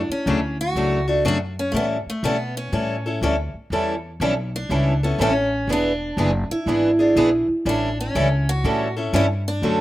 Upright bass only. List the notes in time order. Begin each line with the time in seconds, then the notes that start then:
0.09 muted upright bass stroke
0.26 D2
0.75 C#2
1.25 F#2
1.73 A2
2.06 muted upright bass stroke
2.23 B2
2.72 A2
3.21 D2
3.54 muted upright bass stroke
3.70 E2
4.20 B1
4.70 C#2
5.19 A1
5.67 E1
6.17 F#1
6.50 muted upright bass stroke
6.66 G#1
7.16 A#1
7.48 muted upright bass stroke
7.65 A1
8.15 C#2
8.64 A2
9.13 G2
9.62 F#2